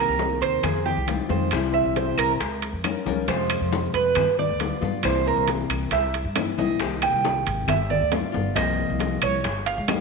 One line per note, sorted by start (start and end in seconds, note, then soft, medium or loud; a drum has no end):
0.00 0.62 C3 medium
0.00 0.62 D#3 medium
0.00 0.63 A#3 medium
0.00 0.63 C4 medium
0.00 0.63 G4 medium
0.00 0.39 A#4 medium
0.08 0.40 C2 medium
0.19 high bongo medium
0.19 high conga medium
0.41 0.62 D#2 medium
0.41 0.63 C5 loud
0.41 high conga soft
0.41 high timbale medium
0.63 0.95 F2 medium
0.63 0.85 G#4 medium
0.63 muted nylon-string guitar stroke medium
0.63 high bongo medium
0.63 high conga soft
0.63 low conga medium
0.63 high timbale medium
0.63 claves medium
0.86 1.07 G4 medium
0.86 high bongo soft
0.86 high conga soft
0.86 low conga medium
0.96 1.18 C2 medium
1.07 1.29 D#3 soft
1.07 1.28 G#3 soft
1.07 1.28 C4 medium
1.07 1.27 F4 medium
1.07 high bongo soft
1.07 low bongo medium
1.07 high conga medium
1.07 high timbale medium
1.28 1.51 F2 medium
1.28 1.51 D#3 medium
1.28 1.51 G#3 medium
1.28 1.51 C4 medium
1.28 1.51 F4 medium
1.28 1.71 C5 medium
1.28 high bongo soft
1.28 high conga medium
1.51 1.83 C2 medium
1.51 2.39 C3 medium
1.51 2.40 E3 medium
1.51 2.40 G3 medium
1.51 2.40 C4 medium
1.51 2.40 E4 medium
1.51 high bongo medium
1.51 high conga soft
1.51 high timbale medium
1.51 claves medium
1.74 1.95 E5 medium
1.74 high bongo soft
1.74 high conga soft
1.85 2.17 C2 medium
1.96 2.18 C5 medium
1.96 high bongo medium
1.96 high conga medium
1.96 high timbale medium
2.18 2.39 C2 medium
2.18 2.31 A#4 loud
2.18 high timbale medium
2.18 claves medium
2.40 2.71 C#2 medium
2.40 high bongo medium
2.40 high conga soft
2.40 high timbale medium
2.62 high bongo soft
2.62 high conga soft
2.62 high timbale medium
2.73 2.94 F2 medium
2.84 3.06 G#3 soft
2.84 3.06 C#4 medium
2.84 3.05 F4 medium
2.84 3.05 A#4 soft
2.84 high bongo soft
2.84 low bongo medium
2.84 high conga medium
2.84 high timbale medium
2.84 claves medium
3.06 3.27 C#2 medium
3.06 3.27 F3 medium
3.06 3.27 G#3 soft
3.06 3.28 C#4 medium
3.06 3.28 F4 medium
3.06 3.28 A#4 medium
3.06 high bongo soft
3.06 high conga medium
3.27 3.60 F2 medium
3.27 4.15 C3 medium
3.27 4.15 F3 medium
3.27 4.15 G#3 medium
3.27 4.16 C4 medium
3.27 4.15 F4 medium
3.27 3.90 C5 medium
3.27 high bongo medium
3.27 high conga soft
3.27 high timbale medium
3.50 high bongo soft
3.50 high conga soft
3.50 high timbale medium
3.50 claves medium
3.61 3.92 F2 medium
3.73 high bongo medium
3.73 high conga medium
3.94 4.15 F2 medium
3.94 4.35 B4 loud
3.94 high conga soft
3.94 high timbale medium
4.15 4.48 G2 medium
4.15 muted nylon-string guitar stroke medium
4.15 high bongo medium
4.15 high conga soft
4.15 low conga medium
4.15 high timbale medium
4.15 claves medium
4.39 5.01 D5 medium
4.39 high bongo soft
4.39 high conga soft
4.39 low conga medium
4.49 4.70 D2 medium
4.60 4.82 G3 soft
4.60 4.82 B3 soft
4.60 4.80 F4 medium
4.60 high bongo soft
4.60 low bongo medium
4.60 high conga medium
4.60 high timbale medium
4.81 5.03 G2 medium
4.81 5.04 B3 medium
4.81 5.03 F4 medium
4.81 high bongo soft
4.81 high conga medium
5.03 5.35 C2 loud
5.03 5.90 C3 medium
5.03 5.91 E3 medium
5.03 5.91 A#3 medium
5.03 5.91 C4 medium
5.03 5.91 E4 medium
5.03 5.26 C5 medium
5.03 high bongo medium
5.03 high conga soft
5.03 high timbale medium
5.03 claves medium
5.27 5.48 A#4 medium
5.27 high bongo soft
5.27 high conga soft
5.36 5.68 C2 medium
5.47 high bongo medium
5.47 high conga medium
5.47 high timbale medium
5.69 5.90 C2 medium
5.69 high timbale loud
5.69 claves medium
5.91 6.23 C2 medium
5.91 6.54 E5 medium
5.91 muted nylon-string guitar stroke medium
5.91 high bongo medium
5.91 high conga soft
5.91 high timbale medium
6.14 high bongo soft
6.14 high conga soft
6.14 high timbale medium
6.25 6.46 G2 medium
6.36 6.57 E3 soft
6.36 6.58 A#3 medium
6.36 6.58 C4 medium
6.36 6.57 E4 medium
6.36 high bongo soft
6.36 low bongo medium
6.36 high conga medium
6.36 high timbale loud
6.36 low timbale medium
6.36 claves medium
6.58 6.79 C2 medium
6.58 6.80 E3 medium
6.58 6.80 A#3 medium
6.58 6.80 C4 medium
6.58 6.79 E4 medium
6.58 7.00 D#5 medium
6.58 high bongo soft
6.58 high conga medium
6.79 7.11 C2 medium
6.79 7.67 C3 medium
6.79 7.68 D#3 medium
6.79 7.67 A#3 medium
6.79 7.68 C4 medium
6.79 7.68 G4 medium
6.79 high bongo medium
6.79 high conga soft
6.79 high timbale medium
7.02 7.65 G5 medium
7.02 high bongo soft
7.02 high conga soft
7.02 high timbale medium
7.02 claves medium
7.13 7.44 C2 medium
7.25 high bongo medium
7.25 high conga medium
7.46 7.67 G#1 medium
7.46 high conga soft
7.46 high timbale medium
7.68 7.99 G1 loud
7.68 7.90 E5 medium
7.68 muted nylon-string guitar stroke medium
7.68 high bongo medium
7.68 high conga soft
7.68 low conga medium
7.68 high timbale medium
7.68 claves medium
7.90 8.12 D5 medium
7.90 high bongo soft
7.90 high conga soft
7.90 low conga medium
8.01 8.22 D2 medium
8.10 8.33 G3 soft
8.10 8.33 B3 soft
8.10 8.31 F4 medium
8.10 high bongo soft
8.10 low bongo medium
8.10 high conga medium
8.10 high timbale medium
8.10 low timbale medium
8.32 8.55 G1 loud
8.32 8.55 B3 medium
8.32 8.55 F4 medium
8.32 high bongo soft
8.32 high conga medium
8.54 8.88 C2 medium
8.54 9.43 C3 medium
8.54 9.43 F3 medium
8.54 9.43 A#3 medium
8.54 9.44 C4 medium
8.54 9.44 F4 medium
8.54 9.18 D#5 medium
8.54 high bongo medium
8.54 high conga soft
8.54 high timbale medium
8.54 claves medium
8.78 high bongo soft
8.78 high conga soft
8.90 9.21 C2 medium
9.00 high bongo medium
9.00 high conga medium
9.00 high timbale medium
9.22 9.43 C2 medium
9.22 9.64 C#5 medium
9.22 high timbale loud
9.22 claves medium
9.43 9.76 G1 medium
9.43 muted nylon-string guitar stroke medium
9.43 high bongo medium
9.43 high conga soft
9.43 high timbale medium
9.66 10.01 F5 loud
9.66 high bongo soft
9.66 high conga soft
9.66 high timbale medium
9.78 9.99 C#2 medium
9.88 10.01 G3 medium
9.88 10.01 A#3 medium
9.88 10.01 C#4 soft
9.88 10.01 G4 medium
9.88 high bongo soft
9.88 low bongo medium
9.88 high conga medium
9.88 high timbale medium
9.88 low timbale medium
9.88 claves medium